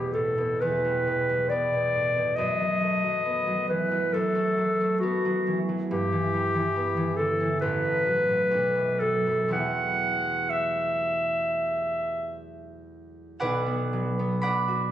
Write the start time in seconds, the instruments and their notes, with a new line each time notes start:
Already playing: harp E2 B2 G3 B3, clarinet G4
0.13 harp A2, clarinet A4
0.38 harp B2
0.61 harp E2, clarinet B4
0.85 harp G3
1.07 harp B2
1.29 harp G3
1.49 harp B3, clarinet D5
1.73 harp B2
1.94 harp A2
2.17 harp B2
2.36 harp F#2, clarinet D#5
2.60 harp F#3
2.81 harp A3
3.04 harp F#3
3.25 harp B3
3.47 harp F#3
3.69 harp E3, clarinet B4
3.91 harp F#3
4.13 harp F#2, clarinet A4
4.35 harp A3
4.58 harp F#3
4.80 harp A3
5.00 harp B3, clarinet F#4
5.25 harp F#3
5.47 harp E3
5.69 harp F#3
5.90 harp G2, clarinet G4
6.12 harp E3
6.34 harp G3
6.55 harp E3
6.76 harp B3
6.97 harp E3
7.17 harp D3, clarinet A4
7.40 harp E3
7.61 harp A1, clarinet B4
7.85 harp A2
8.06 harp F#3
8.29 harp A2
8.51 harp B1
8.75 harp F#2
9.00 harp F#3, clarinet A4
9.27 harp F#2
9.48 harp E2 G3 B3 E4
9.52 clarinet F#5
10.50 clarinet E5
13.40 harp B1 B4 D5 F#5
13.66 harp B3
13.93 harp F#3
14.19 harp B3
14.42 harp D4 D5 F#5 B5
14.68 harp F#4